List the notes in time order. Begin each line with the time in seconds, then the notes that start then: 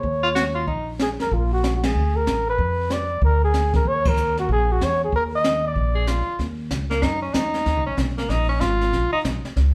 Already playing: C#5
0.03 D#2, brush sweep, kick
0.23 F4
0.35 F#4, snare, hi-hat pedal
0.55 F4
0.67 A#1 D#4, brush sweep, kick
0.99 G#4, snare, hi-hat pedal
1.19 F2 A#4, snare
1.31 A#1 F4, brush sweep, kick
1.53 F#4
1.64 snare, hi-hat pedal
1.76 F#4
1.83 G#4, snare, ride
1.95 D2, brush sweep
2.17 A#4
2.26 A1, snare, hi-hat pedal
2.50 B4
2.58 F2, brush sweep, kick
2.90 D5, snare, hi-hat pedal
3.22 D2 A#4, brush sweep, kick
3.44 G#4
3.54 snare, hi-hat pedal
3.74 A#4, kick, snare
3.85 D#2 C#5, brush sweep, kick
4.05 A#4, kick, ride
4.17 hi-hat pedal
4.37 F#4, snare
4.49 A#1 G#4, brush sweep, kick
4.72 F#4
4.81 E2 C#5, snare, hi-hat pedal
5.04 G#4
5.12 D#2 A#4, brush sweep, kick
5.36 D#5
5.44 snare, hi-hat pedal
5.67 D5
5.75 A#1, brush sweep, kick
5.95 G#4
6.07 F4, snare, hi-hat pedal
6.28 muted upright bass stroke
6.39 D#2, brush sweep, kick, snare
6.71 C#2, kick, snare, hi-hat pedal
6.90 A#3, snare
7.02 F#2 D#4, brush sweep, kick, snare
7.22 C#4
7.34 E2 D#4, kick, snare, hi-hat pedal
7.54 snare
7.66 D#2, brush sweep, kick, snare
7.77 C#2
7.86 A#1 C#4
7.97 B1, kick, snare, hi-hat pedal
8.18 A#3, snare
8.29 A#1 D#4, brush sweep, kick, snare
8.49 C#4
8.61 G#1 F4, kick, snare, hi-hat pedal
8.81 snare
8.93 A#1, brush sweep, kick, snare
9.13 D#4, muted upright bass stroke
9.24 B1, kick, snare, hi-hat pedal
9.45 muted upright bass stroke, snare
9.56 C#2, brush sweep, kick, snare